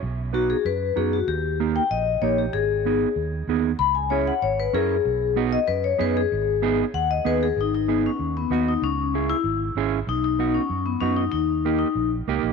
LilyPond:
<<
  \new Staff \with { instrumentName = "Vibraphone" } { \time 4/4 \key gis \minor \tempo 4 = 191 r4 fis'8 gis'8 b'4 gis'8 fis'8 | g'4 r8 g''8 dis''4 cis''8 g'8 | gis'2 r2 | b''8 gis''8 cis''8 fis''8 cis''8 b'8 gis'4~ |
gis'4 r8 dis''8 b'8 cis''8 b'8 gis'8~ | gis'4. r8 fis''8 dis''8 b'8 gis'8 | dis'8 dis'4 cis'4 b8 b8 dis'8 | cis'4. e'4 r4. |
dis'8 dis'4 cis'4 b8 cis'8 dis'8 | dis'4. dis'4 r4. | }
  \new Staff \with { instrumentName = "Clean electric guitar" } { \time 4/4 \key gis \minor r4 <b dis' fis'>8 r4. <b dis' fis'>8 r8 | r4 <ais dis' g'>8 r4. <ais dis' g'>8 r8 | r4 <b dis' gis'>8 r4. <b dis' gis'>8 r8 | r4 <cis' e' gis'>8 r4. <cis' e' ais'>8 r8 |
r4 <b dis' fis'>8 r4. <b dis' gis'>8 r8 | r4 <b dis' gis'>8 r4. <b dis' gis'>8 r8 | r4 <b dis' gis'>8 r4. <b dis' fis'>8 r8 | r4 <cis' e' gis'>8 r4. <cis' e' gis'>8 r8 |
r4 <b dis' fis'>8 r4. <b dis' fis'>8 r8 | r4 <ais dis' g'>8 r4. <ais dis' g'>8 r8 | }
  \new Staff \with { instrumentName = "Fingered electric bass" } { \clef bass \time 4/4 \key gis \minor b,,2 fis,4 fis,4 | dis,2 ais,,4 ais,,4 | gis,,2 dis,4 dis,4 | cis,2 gis,,4 fis,4 |
b,,2 fis,4 fis,4 | gis,,2 dis,4 dis,4 | gis,,2 dis,4 dis,4 | cis,2 gis,,4 gis,,4 |
b,,2 fis,4 fis,4 | dis,2 ais,,4 cis,8 ais,,8 | }
>>